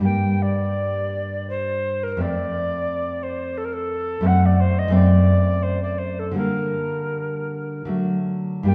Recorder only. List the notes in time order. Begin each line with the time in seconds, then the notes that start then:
0.05 G5
0.42 D5
1.49 C5
2.03 A#4
2.21 D5
3.22 C5
3.57 A4
3.64 A#4
3.73 A4
4.26 F#5
4.45 D5
4.60 C5
4.78 D#5
4.94 D5
5.62 C5
5.82 D5
5.98 C5
6.19 A4
6.36 A#4
8.67 G5